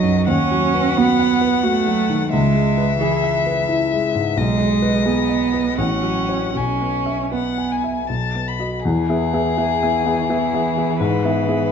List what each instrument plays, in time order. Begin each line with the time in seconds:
Already playing: grand piano B1 F#3 D#4 F#4 B4 D#5, cello F#3, violin D#5
0.03 grand piano F#2
0.27 grand piano D#2, cello C#4, violin F#5
0.51 grand piano F#3
0.74 grand piano B4
0.97 cello B3, grand piano F#4
1.19 grand piano F#5
1.41 grand piano B4
1.63 cello A3, grand piano F#4
1.87 grand piano F#3
2.10 grand piano D#3
2.32 grand piano C#2, cello G#3, violin E5
2.55 grand piano G#3
2.77 grand piano B4
2.99 cello E3, grand piano G#4
3.24 grand piano E5
3.46 grand piano B4
3.69 grand piano E4
3.93 grand piano G#3
4.15 grand piano G#2
4.37 grand piano B1, cello G#3, violin D#5
4.60 grand piano G#3
4.82 grand piano B4
5.06 cello B3, grand piano G#4
5.29 grand piano D#5
5.54 grand piano B4
5.78 grand piano A1, cello C#4, violin F#5
6.03 grand piano F#3
6.29 grand piano F#4 C#5
6.54 grand piano B1, cello C#4, violin G#5
6.81 grand piano B3
7.06 grand piano E5
7.32 cello B3, grand piano B4, violin F#5
7.58 grand piano G#5
7.72 violin G#5
7.84 grand piano E5
8.09 grand piano B1, violin A5
8.35 grand piano B3
8.48 violin B5
8.59 grand piano F#4 D#5
8.84 grand piano E2, cello E3, violin G#4
9.09 grand piano B3 G#4 E5
9.33 grand piano B3 G#4 E5
9.58 grand piano B3 G#4 E5
9.83 grand piano B3 G#4 E5
10.06 grand piano B3 G#4 E5
10.30 grand piano B3 G#4 E5
10.54 grand piano B3 G#4 E5
10.78 grand piano B3 G#4 E5
11.00 grand piano G#2, violin B4
11.25 grand piano B3 G#4 E5
11.48 grand piano B3 G#4 E5